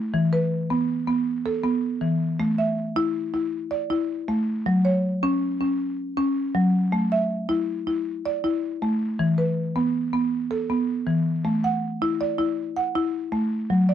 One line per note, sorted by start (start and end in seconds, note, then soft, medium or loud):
0.00 0.13 A3 medium
0.14 0.51 E3 medium
0.33 0.89 B4 medium
0.70 1.06 B3 medium
1.07 1.45 B3 medium
1.46 2.02 A4 medium
1.64 2.02 B3 medium
2.01 2.39 E3 medium
2.40 2.77 A3 medium
2.58 3.15 E5 medium
2.96 3.33 E4 medium
3.34 3.72 E4 medium
3.71 4.28 D5 medium
3.90 4.28 E4 medium
4.28 4.66 A3 medium
4.66 5.04 F#3 medium
4.85 5.42 C#5 medium
5.23 5.59 C#4 medium
5.61 5.98 C#4 medium
6.17 6.55 C#4 medium
6.55 6.93 F#3 medium
6.92 7.30 A3 medium
7.12 7.68 E5 medium
7.49 7.86 E4 medium
7.87 8.25 E4 medium
8.26 8.82 D5 medium
8.44 8.82 E4 medium
8.82 9.20 A3 medium
9.19 9.57 E3 medium
9.38 9.95 B4 medium
9.76 10.12 B3 medium
10.13 10.51 B3 medium
10.51 11.07 A4 medium
10.70 11.07 B3 medium
11.07 11.45 E3 medium
11.45 11.83 A3 medium
11.64 12.21 F#5 medium
12.02 12.37 E4 medium
12.21 12.77 D5 medium
12.39 12.76 E4 medium
12.77 13.33 F#5 medium
12.96 13.33 E4 medium
13.32 13.70 A3 medium
13.70 13.94 F#3 medium
13.89 13.94 D5 medium